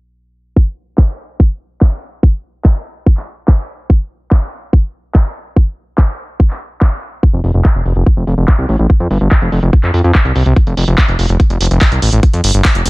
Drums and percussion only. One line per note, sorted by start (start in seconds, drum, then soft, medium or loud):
0.56 kick loud
0.98 kick loud
0.98 clap loud
1.40 kick loud
1.81 kick loud
1.81 clap loud
2.23 kick loud
2.65 kick loud
2.65 clap loud
3.06 kick loud
3.17 clap soft
3.48 kick loud
3.48 clap loud
3.90 kick loud
4.31 kick loud
4.31 clap loud
4.73 kick loud
5.15 kick loud
5.15 clap loud
5.56 kick loud
5.98 kick loud
5.98 clap loud
6.40 kick loud
6.50 clap soft
6.81 kick loud
6.81 clap loud
7.23 kick loud
7.23 closed hi-hat medium
7.33 closed hi-hat soft
7.44 open hi-hat loud
7.54 closed hi-hat soft
7.65 kick loud
7.65 clap loud
7.65 closed hi-hat medium
7.75 closed hi-hat soft
7.86 open hi-hat loud
7.96 closed hi-hat medium
8.06 kick loud
8.06 closed hi-hat medium
8.17 closed hi-hat soft
8.27 open hi-hat loud
8.38 closed hi-hat soft
8.48 kick loud
8.48 clap loud
8.48 closed hi-hat medium
8.59 closed hi-hat medium
8.69 open hi-hat loud
8.79 closed hi-hat medium
8.90 kick loud
8.90 closed hi-hat medium
9.00 closed hi-hat medium
9.11 open hi-hat loud
9.21 closed hi-hat medium
9.31 kick loud
9.31 clap loud
9.31 closed hi-hat medium
9.42 closed hi-hat soft
9.52 open hi-hat loud
9.63 closed hi-hat medium
9.73 kick loud
9.73 closed hi-hat medium
9.84 clap soft
9.84 closed hi-hat soft
9.94 open hi-hat loud
9.99 closed hi-hat medium
10.04 closed hi-hat medium
10.15 kick loud
10.15 clap loud
10.15 closed hi-hat medium
10.25 closed hi-hat medium
10.36 open hi-hat loud
10.46 closed hi-hat medium
10.56 kick loud
10.56 closed hi-hat medium
10.67 closed hi-hat medium
10.77 open hi-hat medium
10.88 closed hi-hat medium
10.98 kick loud
10.98 clap loud
10.98 closed hi-hat medium
11.09 closed hi-hat medium
11.19 open hi-hat loud
11.29 closed hi-hat medium
11.40 kick loud
11.40 closed hi-hat medium
11.50 closed hi-hat medium
11.61 open hi-hat loud
11.66 closed hi-hat medium
11.71 closed hi-hat medium
11.81 kick loud
11.81 clap loud
11.81 closed hi-hat medium
11.92 closed hi-hat medium
12.02 open hi-hat loud
12.13 closed hi-hat medium
12.23 kick loud
12.23 closed hi-hat medium
12.33 closed hi-hat medium
12.44 open hi-hat loud
12.54 closed hi-hat medium
12.65 kick loud
12.65 clap loud
12.65 closed hi-hat medium
12.75 closed hi-hat medium
12.86 open hi-hat loud